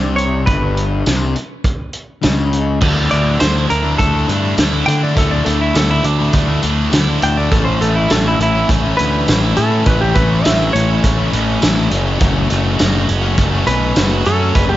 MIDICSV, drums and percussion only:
0, 0, Header, 1, 2, 480
1, 0, Start_track
1, 0, Tempo, 586510
1, 387, Time_signature, 4, 2, 24, 8
1, 12087, End_track
2, 0, Start_track
2, 0, Title_t, "Drums"
2, 149, Note_on_c, 9, 42, 61
2, 231, Note_off_c, 9, 42, 0
2, 387, Note_on_c, 9, 36, 99
2, 388, Note_on_c, 9, 42, 73
2, 469, Note_off_c, 9, 36, 0
2, 469, Note_off_c, 9, 42, 0
2, 631, Note_on_c, 9, 42, 55
2, 713, Note_off_c, 9, 42, 0
2, 870, Note_on_c, 9, 42, 78
2, 870, Note_on_c, 9, 54, 108
2, 877, Note_on_c, 9, 38, 98
2, 952, Note_off_c, 9, 42, 0
2, 952, Note_off_c, 9, 54, 0
2, 959, Note_off_c, 9, 38, 0
2, 1110, Note_on_c, 9, 42, 57
2, 1192, Note_off_c, 9, 42, 0
2, 1343, Note_on_c, 9, 42, 82
2, 1345, Note_on_c, 9, 36, 102
2, 1425, Note_off_c, 9, 42, 0
2, 1427, Note_off_c, 9, 36, 0
2, 1579, Note_on_c, 9, 42, 58
2, 1661, Note_off_c, 9, 42, 0
2, 1825, Note_on_c, 9, 42, 71
2, 1825, Note_on_c, 9, 54, 96
2, 1831, Note_on_c, 9, 38, 102
2, 1907, Note_off_c, 9, 42, 0
2, 1907, Note_off_c, 9, 54, 0
2, 1913, Note_off_c, 9, 38, 0
2, 2068, Note_on_c, 9, 42, 54
2, 2150, Note_off_c, 9, 42, 0
2, 2302, Note_on_c, 9, 49, 91
2, 2306, Note_on_c, 9, 36, 109
2, 2384, Note_off_c, 9, 49, 0
2, 2388, Note_off_c, 9, 36, 0
2, 2542, Note_on_c, 9, 42, 58
2, 2624, Note_off_c, 9, 42, 0
2, 2783, Note_on_c, 9, 42, 87
2, 2783, Note_on_c, 9, 54, 103
2, 2790, Note_on_c, 9, 38, 110
2, 2865, Note_off_c, 9, 42, 0
2, 2865, Note_off_c, 9, 54, 0
2, 2872, Note_off_c, 9, 38, 0
2, 3028, Note_on_c, 9, 42, 62
2, 3110, Note_off_c, 9, 42, 0
2, 3268, Note_on_c, 9, 36, 78
2, 3271, Note_on_c, 9, 42, 85
2, 3350, Note_off_c, 9, 36, 0
2, 3353, Note_off_c, 9, 42, 0
2, 3512, Note_on_c, 9, 42, 66
2, 3594, Note_off_c, 9, 42, 0
2, 3747, Note_on_c, 9, 42, 89
2, 3747, Note_on_c, 9, 54, 103
2, 3753, Note_on_c, 9, 38, 104
2, 3828, Note_off_c, 9, 42, 0
2, 3828, Note_off_c, 9, 54, 0
2, 3835, Note_off_c, 9, 38, 0
2, 3995, Note_on_c, 9, 42, 71
2, 4077, Note_off_c, 9, 42, 0
2, 4229, Note_on_c, 9, 36, 102
2, 4229, Note_on_c, 9, 42, 89
2, 4311, Note_off_c, 9, 36, 0
2, 4311, Note_off_c, 9, 42, 0
2, 4467, Note_on_c, 9, 42, 74
2, 4549, Note_off_c, 9, 42, 0
2, 4709, Note_on_c, 9, 42, 93
2, 4709, Note_on_c, 9, 54, 109
2, 4715, Note_on_c, 9, 38, 113
2, 4790, Note_off_c, 9, 42, 0
2, 4790, Note_off_c, 9, 54, 0
2, 4797, Note_off_c, 9, 38, 0
2, 4944, Note_on_c, 9, 42, 66
2, 5026, Note_off_c, 9, 42, 0
2, 5181, Note_on_c, 9, 42, 95
2, 5187, Note_on_c, 9, 36, 89
2, 5262, Note_off_c, 9, 42, 0
2, 5269, Note_off_c, 9, 36, 0
2, 5422, Note_on_c, 9, 42, 64
2, 5504, Note_off_c, 9, 42, 0
2, 5669, Note_on_c, 9, 42, 87
2, 5669, Note_on_c, 9, 54, 105
2, 5676, Note_on_c, 9, 38, 103
2, 5751, Note_off_c, 9, 42, 0
2, 5751, Note_off_c, 9, 54, 0
2, 5758, Note_off_c, 9, 38, 0
2, 5910, Note_on_c, 9, 42, 65
2, 5991, Note_off_c, 9, 42, 0
2, 6151, Note_on_c, 9, 42, 84
2, 6152, Note_on_c, 9, 36, 100
2, 6233, Note_off_c, 9, 42, 0
2, 6234, Note_off_c, 9, 36, 0
2, 6398, Note_on_c, 9, 42, 62
2, 6480, Note_off_c, 9, 42, 0
2, 6630, Note_on_c, 9, 42, 92
2, 6630, Note_on_c, 9, 54, 110
2, 6637, Note_on_c, 9, 38, 108
2, 6712, Note_off_c, 9, 42, 0
2, 6712, Note_off_c, 9, 54, 0
2, 6718, Note_off_c, 9, 38, 0
2, 6877, Note_on_c, 9, 42, 59
2, 6959, Note_off_c, 9, 42, 0
2, 7113, Note_on_c, 9, 36, 90
2, 7115, Note_on_c, 9, 42, 87
2, 7195, Note_off_c, 9, 36, 0
2, 7197, Note_off_c, 9, 42, 0
2, 7355, Note_on_c, 9, 42, 65
2, 7437, Note_off_c, 9, 42, 0
2, 7595, Note_on_c, 9, 42, 85
2, 7595, Note_on_c, 9, 54, 102
2, 7602, Note_on_c, 9, 38, 99
2, 7677, Note_off_c, 9, 42, 0
2, 7677, Note_off_c, 9, 54, 0
2, 7684, Note_off_c, 9, 38, 0
2, 7828, Note_on_c, 9, 42, 66
2, 7910, Note_off_c, 9, 42, 0
2, 8068, Note_on_c, 9, 42, 87
2, 8073, Note_on_c, 9, 36, 99
2, 8150, Note_off_c, 9, 42, 0
2, 8155, Note_off_c, 9, 36, 0
2, 8309, Note_on_c, 9, 42, 71
2, 8314, Note_on_c, 9, 36, 81
2, 8391, Note_off_c, 9, 42, 0
2, 8395, Note_off_c, 9, 36, 0
2, 8554, Note_on_c, 9, 42, 102
2, 8554, Note_on_c, 9, 54, 109
2, 8560, Note_on_c, 9, 38, 112
2, 8635, Note_off_c, 9, 42, 0
2, 8635, Note_off_c, 9, 54, 0
2, 8642, Note_off_c, 9, 38, 0
2, 8802, Note_on_c, 9, 42, 68
2, 8883, Note_off_c, 9, 42, 0
2, 9034, Note_on_c, 9, 42, 103
2, 9035, Note_on_c, 9, 36, 86
2, 9116, Note_off_c, 9, 36, 0
2, 9116, Note_off_c, 9, 42, 0
2, 9274, Note_on_c, 9, 42, 67
2, 9355, Note_off_c, 9, 42, 0
2, 9511, Note_on_c, 9, 42, 85
2, 9511, Note_on_c, 9, 54, 108
2, 9518, Note_on_c, 9, 38, 102
2, 9593, Note_off_c, 9, 42, 0
2, 9593, Note_off_c, 9, 54, 0
2, 9600, Note_off_c, 9, 38, 0
2, 9749, Note_on_c, 9, 42, 70
2, 9831, Note_off_c, 9, 42, 0
2, 9988, Note_on_c, 9, 42, 87
2, 9992, Note_on_c, 9, 36, 107
2, 10070, Note_off_c, 9, 42, 0
2, 10074, Note_off_c, 9, 36, 0
2, 10230, Note_on_c, 9, 42, 70
2, 10311, Note_off_c, 9, 42, 0
2, 10469, Note_on_c, 9, 42, 85
2, 10469, Note_on_c, 9, 54, 107
2, 10476, Note_on_c, 9, 38, 111
2, 10551, Note_off_c, 9, 42, 0
2, 10551, Note_off_c, 9, 54, 0
2, 10557, Note_off_c, 9, 38, 0
2, 10711, Note_on_c, 9, 42, 65
2, 10793, Note_off_c, 9, 42, 0
2, 10947, Note_on_c, 9, 42, 91
2, 10950, Note_on_c, 9, 36, 90
2, 11029, Note_off_c, 9, 42, 0
2, 11032, Note_off_c, 9, 36, 0
2, 11188, Note_on_c, 9, 42, 67
2, 11270, Note_off_c, 9, 42, 0
2, 11425, Note_on_c, 9, 42, 85
2, 11425, Note_on_c, 9, 54, 104
2, 11431, Note_on_c, 9, 38, 104
2, 11507, Note_off_c, 9, 42, 0
2, 11507, Note_off_c, 9, 54, 0
2, 11513, Note_off_c, 9, 38, 0
2, 11666, Note_on_c, 9, 42, 64
2, 11748, Note_off_c, 9, 42, 0
2, 11906, Note_on_c, 9, 42, 93
2, 11911, Note_on_c, 9, 36, 108
2, 11988, Note_off_c, 9, 42, 0
2, 11992, Note_off_c, 9, 36, 0
2, 12087, End_track
0, 0, End_of_file